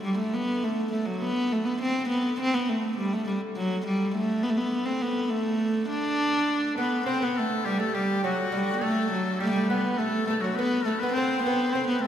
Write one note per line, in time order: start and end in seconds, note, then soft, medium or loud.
0.00 2.38 D3 medium
0.00 0.16 G3 medium
0.00 2.38 A3 medium
0.18 0.35 A3 medium
0.34 0.66 B3 medium
0.64 0.91 A3 medium
0.92 1.07 A3 medium
1.05 1.23 F#3 medium
1.22 1.54 B3 medium
1.52 1.67 A3 medium
1.65 1.79 B3 medium
1.82 2.07 C4 medium
2.09 2.36 B3 medium
2.38 7.07 D3 medium
2.38 7.07 A3 medium
2.38 2.56 C4 medium
2.54 2.70 B3 medium
2.69 2.97 A3 medium
2.97 3.14 G3 medium
3.13 3.26 A3 medium
3.27 3.40 G3 medium
3.57 3.83 F#3 medium
3.87 4.13 G3 medium
4.16 4.44 A3 medium
4.43 4.51 B3 medium
4.50 4.58 A3 medium
4.57 4.87 B3 medium
4.86 5.03 C4 medium
5.02 5.31 B3 medium
5.30 5.88 A3 medium
5.89 6.73 D4 loud
6.76 7.06 B3 medium
6.76 7.05 B3 medium
6.76 7.04 B4 medium
7.06 11.77 D3 medium
7.06 11.77 A3 medium
7.06 7.21 C4 medium
7.06 7.25 C4 medium
7.06 7.20 C5 medium
7.21 7.67 B3 medium
7.21 7.41 B3 medium
7.21 7.39 B4 medium
7.37 7.64 A3 medium
7.37 7.67 A4 medium
7.65 7.79 G3 medium
7.65 7.80 G3 medium
7.65 7.79 G4 medium
7.78 7.93 A3 medium
7.78 7.95 A3 medium
7.78 7.96 A4 medium
7.93 8.21 G3 medium
7.93 8.22 G3 medium
7.93 8.23 G4 medium
8.23 8.36 F#3 medium
8.23 8.52 F#3 medium
8.23 8.84 F#4 medium
8.52 8.83 G3 medium
8.52 8.73 G3 medium
8.76 8.84 B3 medium
8.81 9.42 A3 medium
8.81 9.11 A3 medium
8.81 9.42 A4 medium
9.12 9.43 F#3 medium
9.40 9.56 G3 medium
9.40 9.45 G3 medium
9.40 9.51 A3 medium
9.40 9.47 G4 medium
9.48 9.57 G3 medium
9.48 9.68 G4 medium
9.56 9.73 A3 medium
9.56 9.69 A3 medium
9.68 10.00 B3 medium
9.68 10.01 B3 medium
9.68 9.90 B4 medium
9.93 9.99 B4 medium
9.97 10.26 A3 medium
9.97 10.29 A3 medium
9.97 10.26 A4 medium
10.27 10.34 A3 medium
10.27 10.45 A3 medium
10.27 10.43 A4 medium
10.40 10.55 F#3 medium
10.40 10.57 F#4 medium
10.44 10.59 F#3 medium
10.56 10.84 B3 medium
10.56 10.87 B3 medium
10.56 10.86 B4 medium
10.85 10.93 A3 medium
10.85 11.01 A3 medium
10.85 11.01 A4 medium
11.00 11.12 B3 medium
11.00 11.16 B3 medium
11.00 11.16 B4 medium
11.13 11.42 C4 medium
11.13 11.72 C5 medium
11.17 11.44 C4 medium
11.43 11.74 B3 medium
11.43 11.75 B3 medium
11.72 11.87 C4 medium
11.72 12.05 C4 medium
11.72 11.86 C5 medium
11.77 12.07 D3 medium
11.77 12.07 A3 medium
11.87 12.02 B3 medium
11.87 12.02 B4 medium
12.01 12.07 A3 medium
12.01 12.07 A4 medium